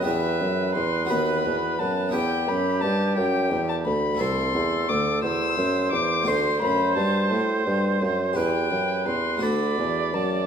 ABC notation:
X:1
M:6/8
L:1/16
Q:3/8=58
K:Em
V:1 name="Violin"
e4 c'2 b4 a2 | g2 b2 a2 g3 a b2 | [K:Dmix] c'4 d'2 e'4 d'2 | c'2 b2 a2 z6 |
g4 c'2 b4 a2 |]
V:2 name="Oboe"
B12 | G8- G2 z2 | [K:Dmix] A6 c6 | c12 |
B6 d6 |]
V:3 name="Harpsichord"
[B,GB]6 [B,FB]6 | [B,EB]12 | [K:Dmix] [A,Ee]12 | [A,Fd]12 |
[GB]6 [A,Fd]6 |]
V:4 name="Harpsichord" clef=bass
E,,2 F,,2 E,,2 ^D,,2 E,,2 F,,2 | E,,2 F,,2 G,,2 F,,2 E,,2 D,,2 | [K:Dmix] C,,2 E,,2 D,,2 E,,2 F,,2 E,,2 | D,,2 F,,2 G,,2 A,,2 G,,2 F,,2 |
E,,2 F,,2 E,,2 D,,2 E,,2 F,,2 |]
V:5 name="Bassoon" clef=bass
E,,2 F,,2 E,,2 ^D,,2 E,,2 F,,2 | E,,2 F,,2 G,,2 F,,2 E,,2 D,,2 | [K:Dmix] C,,2 E,,2 D,,2 E,,2 F,,2 E,,2 | D,,2 F,,2 G,,2 A,,2 G,,2 F,,2 |
E,,2 F,,2 E,,2 D,,2 E,,2 F,,2 |]